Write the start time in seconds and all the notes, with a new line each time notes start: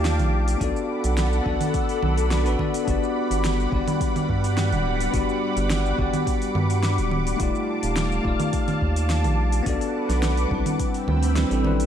Already playing: D#2 A3 D#4 F4 G4 D5 F5 A5 D6
0.05 snare, open hi-hat, shaker
0.19 A#1, open hi-hat, low conga, shaker
0.48 open hi-hat, shaker
0.57 B3 D4 F#4 A4 F#5 B5, kick
0.61 B1 A4 D5, open hi-hat, shaker
0.76 shaker
1.04 B1, open hi-hat, shaker
1.17 snare, open hi-hat, shaker
1.33 shaker
1.42 B1 B3 D4 F#4, kick
1.47 A4 D5
1.61 open hi-hat, low conga, shaker
1.74 kick, open hi-hat, shaker
1.89 open hi-hat, shaker
2.03 B1, low conga
2.17 open hi-hat, shaker
2.29 B3 D4 F#4 A4 D5, snare, open hi-hat, shaker
2.44 A1 B3 D4 F#4 A4 B4, open hi-hat, shaker
2.57 B3 D4 F#4 A4 D5, kick, low conga
2.74 open hi-hat, shaker
2.84 G3 B3 D4 F#4 F#5, kick
2.88 G1 G4 D5 D6, open hi-hat, shaker
3.03 shaker
3.31 G1, open hi-hat, shaker
3.44 snare, open hi-hat, shaker
3.60 shaker
3.70 G1 B3 D4 F#4, kick
3.75 G4 D5
3.88 open hi-hat, low conga, shaker
4.01 kick, open hi-hat, shaker
4.16 open hi-hat, low conga, shaker
4.29 G2, kick
4.44 open hi-hat, shaker
4.57 snare, open hi-hat, shaker
4.72 D1, open hi-hat, low conga, shaker
5.00 open hi-hat, shaker
5.11 G1 B3 D4 F#4, kick, open hi-hat, shaker
5.15 G4 D5
5.29 shaker
5.57 G1, open hi-hat, shaker
5.70 snare, open hi-hat, shaker
5.86 shaker
5.95 G1 B3 D4 F#4, kick
6.00 G4 D5
6.14 open hi-hat, low conga, shaker
6.27 kick, open hi-hat, shaker
6.42 open hi-hat, shaker
6.55 G2, low conga
6.70 open hi-hat, shaker
6.83 snare, open hi-hat, shaker
6.98 D1, open hi-hat, shaker
7.11 low conga
7.27 open hi-hat, shaker
7.36 D#1 A3 D#4 F4 F5 A5, kick, open hi-hat, shaker
7.41 G4 D5
7.55 shaker
7.83 D#1, open hi-hat, shaker
7.96 snare, open hi-hat, shaker
8.12 shaker
8.21 D#1 A3 D#4 F4, kick
8.26 G4 D5
8.40 open hi-hat, low conga, shaker
8.53 kick, open hi-hat, shaker
8.68 open hi-hat, low conga, shaker
8.81 D#2, kick
8.96 open hi-hat, shaker
9.10 snare, open hi-hat, shaker
9.24 A#1, open hi-hat, low conga, shaker
9.52 open hi-hat, shaker
9.63 B1 B3 D4 F#4 B4 F#5 D6, kick, open hi-hat
9.67 A4 D5, shaker
9.81 open hi-hat, shaker
10.09 B1, snare, open hi-hat, shaker
10.23 snare, open hi-hat, shaker
10.37 open hi-hat, shaker
10.48 B1 G3 C4 D4, kick
10.53 E4 B4
10.66 open hi-hat, low conga, shaker
10.78 C4 G5 B5 E6, kick, open hi-hat, shaker
10.94 open hi-hat, shaker
11.08 D2, low conga
11.23 open hi-hat, shaker
11.35 G3 C4 D4 E4 B4, snare, open hi-hat, shaker
11.50 A1 G3 C4 D4 E4 A4, open hi-hat, shaker
11.64 G3 C4 D4 E4 B4, low conga
11.80 open hi-hat, shaker